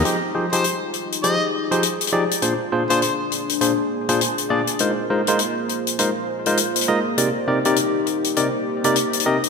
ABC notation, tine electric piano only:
X:1
M:4/4
L:1/16
Q:"Swing 16ths" 1/4=101
K:Fdor
V:1 name="Tine electric piano"
[F,EGAc] z [F,EGAc] [F,EGAc] z4 [F,EGAc] z2 [F,EGAc] z2 [F,EGAd] z | [B,,DFAc] z [B,,DFAc] [B,,DFAc] z4 [B,,DFAc] z2 [B,,DFAc] z2 [B,,DFAd] z | [A,EFBc] z [A,EFBc] [A,EFBc] z4 [A,EFBc] z2 [A,EFBc] z2 [A,EFBe] z | [C,EGBd] z [C,EGBd] [C,EGBd] z4 [C,EGBd] z2 [C,EGBd] z2 [C,EGBe] z |]